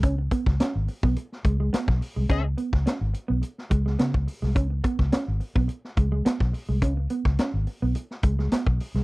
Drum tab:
HH |x-x-x-o-x-x-x-o-|x-x-x-x-x-x-x-o-|x-x-x-o-x-x-x-o-|x-x-x-o-x-x-x-o-|
SD |---oo----o--oo--|---oo----o-oo--o|---oo----o--oo--|---oo----o-oo--o|
BD |o-oo---o--o--o--|o--o------o--o--|o-oo---o--o--o--|o--o------o--o--|